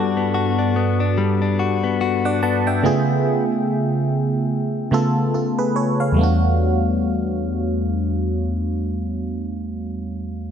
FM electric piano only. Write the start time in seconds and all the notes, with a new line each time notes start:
Already playing: G2 B3 D4 F#4 A4 A5
2.25 D5 F#5
2.43 F#5 A5
2.67 E5 G5
2.83 C#3 A3 B3 F4 G#4
4.91 C#3 A3 B3 F4 A4
5.34 F4 A4
5.59 G#4 B4
5.76 A4 C#5
6.00 C#5 F5
6.12 E2 G3
6.17 A3 B3
6.21 D4 F#4